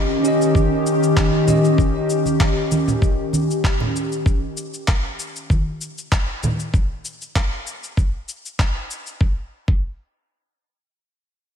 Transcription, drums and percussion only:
0.25 cabasa medium
0.42 cabasa soft
0.55 kick loud
0.55 high conga medium
0.55 cabasa soft
0.87 cabasa medium
1.03 cabasa soft
1.17 kick loud
1.17 clap medium
1.17 cabasa soft
1.48 high conga medium
1.48 low conga medium
1.48 cabasa medium
1.65 cabasa soft
1.78 kick loud
1.78 cabasa soft
2.10 cabasa medium
2.26 high conga medium
2.26 cabasa soft
2.40 kick loud
2.40 clap loud
2.40 cabasa soft
2.72 high conga medium
2.72 cabasa medium
2.88 low conga medium
2.88 cabasa soft
3.02 kick loud
3.02 cabasa soft
3.33 high conga medium
3.33 cabasa medium
3.51 cabasa soft
3.64 kick loud
3.64 clap medium
3.64 cabasa soft
3.80 low conga medium
3.96 cabasa medium
4.12 cabasa soft
4.26 kick loud
4.26 cabasa soft
4.57 cabasa medium
4.74 cabasa soft
4.88 kick loud
4.88 clap medium
4.88 cabasa soft
5.20 cabasa medium
5.36 cabasa soft
5.50 kick medium
5.50 high conga medium
5.50 cabasa soft
5.81 cabasa medium
5.98 cabasa soft
6.12 kick loud
6.12 clap medium
6.12 cabasa soft
6.43 high conga medium
6.43 low conga medium
6.43 cabasa medium
6.60 cabasa soft
6.74 kick loud
6.74 cabasa soft
7.05 cabasa medium
7.22 cabasa soft
7.35 kick loud
7.35 clap medium
7.35 cabasa soft
7.67 cabasa medium
7.84 cabasa soft
7.97 kick loud
7.97 cabasa soft
8.29 cabasa medium
8.45 cabasa soft
8.59 kick loud
8.59 clap medium
8.59 cabasa soft
8.91 cabasa medium
9.07 cabasa soft
9.21 kick loud
9.68 kick loud

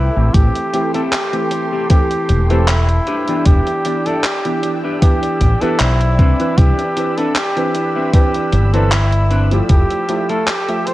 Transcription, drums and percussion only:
0.34 kick loud
0.34 closed hi-hat loud
0.55 closed hi-hat soft
0.74 closed hi-hat medium
0.94 closed hi-hat soft
1.12 clap loud
1.12 closed hi-hat loud
1.33 closed hi-hat soft
1.51 closed hi-hat medium
1.90 kick loud
1.90 closed hi-hat loud
2.11 closed hi-hat soft
2.29 closed hi-hat medium
2.50 closed hi-hat soft
2.68 clap loud
2.68 closed hi-hat loud
2.89 closed hi-hat soft
3.07 closed hi-hat soft
3.28 closed hi-hat soft
3.46 kick loud
3.46 closed hi-hat loud
3.67 closed hi-hat soft
3.85 closed hi-hat medium
4.06 closed hi-hat soft
4.24 clap loud
4.24 closed hi-hat medium
4.45 closed hi-hat soft
4.63 closed hi-hat medium
5.02 kick loud
5.02 closed hi-hat loud
5.23 closed hi-hat soft
5.41 kick medium
5.41 closed hi-hat medium
5.61 closed hi-hat soft
5.79 clap loud
5.79 closed hi-hat loud
6.01 closed hi-hat soft
6.19 kick loud
6.19 closed hi-hat soft
6.40 closed hi-hat soft
6.58 kick loud
6.58 closed hi-hat loud
6.79 closed hi-hat soft
6.97 closed hi-hat medium
7.18 closed hi-hat soft
7.36 clap loud
7.36 closed hi-hat medium
7.57 closed hi-hat soft
7.75 closed hi-hat medium
8.14 kick loud
8.14 closed hi-hat loud
8.34 closed hi-hat soft
8.53 closed hi-hat medium
8.74 closed hi-hat soft
8.92 clap loud
8.92 closed hi-hat medium
9.12 closed hi-hat soft
9.31 closed hi-hat soft
9.51 closed hi-hat soft
9.69 kick loud
9.69 closed hi-hat medium
9.90 closed hi-hat soft
10.09 closed hi-hat medium
10.29 closed hi-hat soft
10.47 clap loud
10.47 closed hi-hat medium
10.69 closed hi-hat soft
10.87 closed hi-hat medium

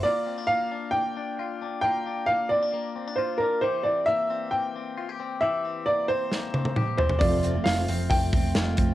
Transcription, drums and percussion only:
6.32 snare medium
6.54 high tom medium
6.65 high tom medium
6.76 mid tom medium
6.98 floor tom loud
7.10 floor tom loud
7.21 kick loud
7.21 open hi-hat loud
7.43 hi-hat pedal medium
7.43 open hi-hat medium
7.66 snare loud
7.66 hi-hat pedal medium
7.66 open hi-hat medium
7.88 hi-hat pedal medium
7.88 open hi-hat medium
8.10 kick loud
8.10 hi-hat pedal medium
8.10 open hi-hat loud
8.33 kick loud
8.33 hi-hat pedal medium
8.33 open hi-hat medium
8.55 snare loud
8.55 hi-hat pedal medium
8.55 open hi-hat loud
8.77 kick loud
8.77 hi-hat pedal medium
8.77 open hi-hat medium

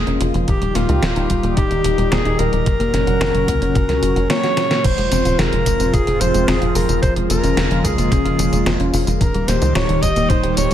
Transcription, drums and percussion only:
0.07 closed hi-hat soft
0.21 closed hi-hat medium
0.34 closed hi-hat soft
0.48 kick loud
0.48 closed hi-hat medium
0.62 closed hi-hat soft
0.75 snare soft
0.75 closed hi-hat medium
0.89 closed hi-hat soft
1.03 snare loud
1.03 closed hi-hat medium
1.16 closed hi-hat soft
1.30 kick medium
1.30 closed hi-hat medium
1.43 closed hi-hat soft
1.57 kick loud
1.57 closed hi-hat medium
1.71 closed hi-hat soft
1.84 closed hi-hat medium
1.98 closed hi-hat soft
2.12 snare loud
2.12 closed hi-hat medium
2.25 closed hi-hat soft
2.39 closed hi-hat medium
2.53 closed hi-hat soft
2.66 kick loud
2.66 closed hi-hat medium
2.80 closed hi-hat soft
2.94 snare soft
2.94 closed hi-hat medium
3.07 closed hi-hat soft
3.21 snare loud
3.21 closed hi-hat medium
3.35 closed hi-hat soft
3.48 kick medium
3.48 closed hi-hat medium
3.62 closed hi-hat soft
3.75 kick loud
3.75 closed hi-hat medium
3.89 snare soft
3.89 closed hi-hat soft
4.03 closed hi-hat medium
4.16 closed hi-hat soft
4.30 snare loud
4.30 closed hi-hat medium
4.44 snare medium
4.44 closed hi-hat soft
4.57 snare medium
4.57 closed hi-hat medium
4.71 snare medium
4.71 closed hi-hat soft
4.84 kick loud
4.84 closed hi-hat medium
4.84 tambourine soft
4.84 crash loud
4.98 closed hi-hat soft
5.12 snare soft
5.12 closed hi-hat medium
5.12 tambourine medium
5.25 closed hi-hat soft
5.25 tambourine soft
5.39 snare loud
5.39 closed hi-hat medium
5.39 tambourine soft
5.53 closed hi-hat soft
5.66 kick medium
5.66 closed hi-hat loud
5.66 tambourine medium
5.80 closed hi-hat soft
5.80 tambourine soft
5.94 kick loud
5.94 closed hi-hat medium
5.94 tambourine soft
6.07 closed hi-hat soft
6.21 closed hi-hat loud
6.21 tambourine medium
6.34 closed hi-hat soft
6.34 tambourine soft
6.48 snare loud
6.48 closed hi-hat medium
6.48 tambourine soft
6.62 closed hi-hat soft
6.75 open hi-hat medium
6.75 tambourine medium
6.89 closed hi-hat soft
6.89 tambourine soft
7.03 kick loud
7.03 closed hi-hat medium
7.03 tambourine soft
7.16 closed hi-hat soft
7.30 closed hi-hat loud
7.30 tambourine medium
7.44 closed hi-hat soft
7.44 tambourine soft
7.57 snare loud
7.57 closed hi-hat medium
7.57 tambourine soft
7.71 closed hi-hat soft
7.84 kick medium
7.84 closed hi-hat loud
7.84 tambourine medium
7.98 closed hi-hat soft
7.98 tambourine soft
8.12 kick loud
8.12 closed hi-hat medium
8.12 tambourine soft
8.26 closed hi-hat soft
8.39 closed hi-hat loud
8.39 tambourine medium
8.53 closed hi-hat soft
8.53 tambourine soft
8.66 snare loud
8.66 closed hi-hat medium
8.66 tambourine soft
8.80 closed hi-hat soft
8.94 open hi-hat medium
8.94 tambourine medium
9.07 closed hi-hat soft
9.07 tambourine soft
9.21 kick loud
9.21 closed hi-hat medium
9.21 tambourine soft
9.34 closed hi-hat soft
9.48 snare soft
9.48 closed hi-hat medium
9.48 tambourine medium
9.62 closed hi-hat soft
9.62 tambourine soft
9.75 snare loud
9.75 closed hi-hat medium
9.75 tambourine soft
9.89 closed hi-hat soft
10.03 kick medium
10.03 closed hi-hat loud
10.03 tambourine medium
10.16 closed hi-hat soft
10.16 tambourine soft
10.30 kick loud
10.30 closed hi-hat medium
10.30 tambourine soft
10.44 closed hi-hat soft
10.57 closed hi-hat medium
10.57 tambourine medium
10.71 closed hi-hat soft
10.71 tambourine soft

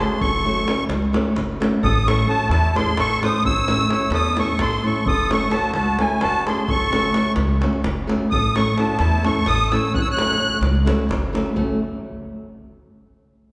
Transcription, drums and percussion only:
0.21 davul low medium
0.57 davul high soft
0.68 davul high medium
0.90 davul high medium
1.02 davul high soft
1.14 davul high medium
1.25 davul high soft
1.36 davul high medium
1.62 davul high medium
1.84 davul low loud
2.08 davul high medium
2.19 davul high soft
2.51 davul high medium
2.64 davul high soft
2.76 davul high medium
2.88 davul high soft
2.97 davul high medium
3.23 davul high medium
3.45 davul low medium
3.57 davul high soft
3.68 davul high medium
3.80 davul high soft
3.90 davul high medium
4.02 davul high soft
4.12 davul high medium
4.24 davul high soft
4.37 davul high medium
4.59 davul high medium
4.59 davul low medium
4.72 davul high soft
4.96 davul high soft
5.06 davul low loud
5.31 davul high medium
5.42 davul high soft
5.51 davul high medium
5.74 davul high medium
5.99 davul high medium
6.10 davul high soft
6.21 davul high medium
6.47 davul high medium
6.68 davul low medium
6.93 davul high medium
7.04 davul high soft
7.14 davul high medium
7.36 davul high medium
7.49 davul high soft
7.62 davul high medium
7.73 davul high soft
7.84 davul high medium
8.10 davul high medium
8.32 davul low medium
8.56 davul high medium
8.78 davul high medium
8.99 davul high medium
9.12 davul high soft
9.25 davul high medium
9.36 davul high soft
9.46 davul high medium
9.72 davul high medium
9.95 davul low loud
10.07 davul high soft
10.18 davul high medium
10.30 davul high soft
10.52 davul high soft
10.63 davul high medium
10.75 davul high soft
10.87 davul high medium
10.99 davul high soft
11.11 davul high medium
11.11 davul low medium
11.35 davul high medium
11.46 davul high soft
11.57 davul low medium

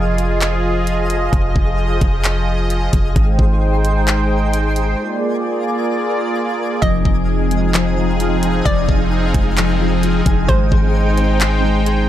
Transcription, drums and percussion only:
0.18 closed hi-hat medium
0.41 clap loud
0.41 closed hi-hat medium
0.87 closed hi-hat medium
1.10 closed hi-hat medium
1.33 kick loud
1.33 closed hi-hat medium
1.56 kick medium
2.01 kick loud
2.01 closed hi-hat medium
2.24 clap loud
2.24 closed hi-hat medium
2.70 closed hi-hat medium
2.93 kick medium
2.93 closed hi-hat medium
3.16 kick loud
3.16 closed hi-hat medium
3.39 kick medium
3.85 closed hi-hat medium
4.08 clap loud
4.08 closed hi-hat medium
4.53 closed hi-hat medium
4.76 closed hi-hat medium
6.82 kick loud
6.82 closed hi-hat medium
7.05 kick medium
7.51 closed hi-hat medium
7.74 clap loud
7.74 closed hi-hat medium
8.20 closed hi-hat medium
8.43 closed hi-hat medium
8.66 kick loud
8.66 closed hi-hat medium
8.89 kick medium
9.34 kick loud
9.34 closed hi-hat medium
9.57 clap loud
9.57 closed hi-hat medium
10.03 closed hi-hat medium
10.26 kick loud
10.26 closed hi-hat medium
10.49 kick loud
10.49 closed hi-hat medium
10.72 kick loud
11.18 closed hi-hat medium
11.41 clap loud
11.41 closed hi-hat medium
11.86 closed hi-hat medium

